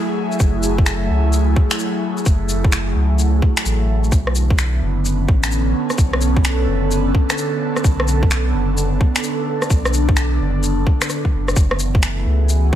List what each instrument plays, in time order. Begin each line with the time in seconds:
Already playing: analog synth pad F#3 A3 E4 G#4
0.32 shaker
0.40 sub bass F#1, kick, shaker
0.63 shaker
0.78 kick
0.86 finger snap, shaker
1.10 sub bass C#2
1.33 shaker
1.56 kick
1.71 finger snap, shaker
1.79 shaker
2.17 shaker
2.26 sub bass F#1, kick, shaker
2.49 shaker
2.64 kick
2.72 finger snap, shaker
2.95 sub bass C#2
3.19 shaker
3.42 kick
3.57 finger snap, shaker
3.65 sub bass A1, shaker
4.04 shaker
4.12 sub bass B1, analog synth pad D3, kick, shaker
4.27 cross-stick
4.35 shaker
4.44 analog synth pad B3
4.50 kick
4.59 finger snap, shaker
4.82 sub bass F#1
4.90 analog synth pad C#4
5.05 shaker
5.28 sub bass A1, analog synth pad A4, kick
5.44 finger snap, shaker
5.52 shaker
5.90 cross-stick, shaker
5.98 sub bass B1, kick, shaker
6.13 cross-stick
6.21 shaker
6.37 kick
6.45 finger snap, shaker
6.68 sub bass F#1
6.91 shaker
7.15 kick
7.30 finger snap, cross-stick, shaker
7.38 shaker
7.76 cross-stick, shaker
7.84 sub bass B1, kick, shaker
8.00 cross-stick
8.08 shaker
8.23 kick
8.31 finger snap, shaker
8.54 sub bass F#1
8.77 shaker
9.00 analog synth pad D4, kick
9.16 finger snap, shaker
9.24 shaker
9.62 cross-stick, shaker
9.70 sub bass B1, kick, shaker
9.85 cross-stick, shaker
9.94 shaker
10.09 kick
10.17 finger snap, shaker
10.40 sub bass F#1
10.63 shaker
10.87 kick
11.02 finger snap, cross-stick, shaker
11.10 cross-stick, shaker
11.25 kick
11.33 sub bass F#1
11.48 cross-stick, shaker
11.56 sub bass F#1, analog synth pad E3, kick, shaker
11.71 cross-stick
11.79 shaker
11.85 analog synth pad A3
11.95 kick
12.03 finger snap, shaker
12.15 analog synth pad G#4
12.20 analog synth pad F#4
12.26 sub bass C#2
12.49 shaker